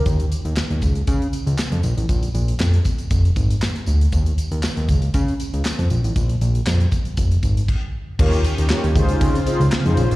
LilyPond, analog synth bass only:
\new Staff \with { instrumentName = "Analog synth bass" } { \clef bass \time 4/4 \key des \lydian \tempo 4 = 118 ees,8 r16 ees,16 r16 ees,16 des,8 des8 r16 des,16 r16 f,16 bes,,16 a,,16 | bes,,8 bes,,8 f,8 r8 f,,8 aes,,8 r8 d,8 | ees,8 r16 ees,16 r16 ees,16 des,8 des8 r16 des,16 r16 f,16 bes,,16 a,,16 | bes,,8 bes,,8 f,8 r8 f,,8 aes,,8 r4 |
ees,8 r16 ees,16 r16 ees,16 des,8 des8 r16 des,16 r16 f,16 bes,,16 a,,16 | }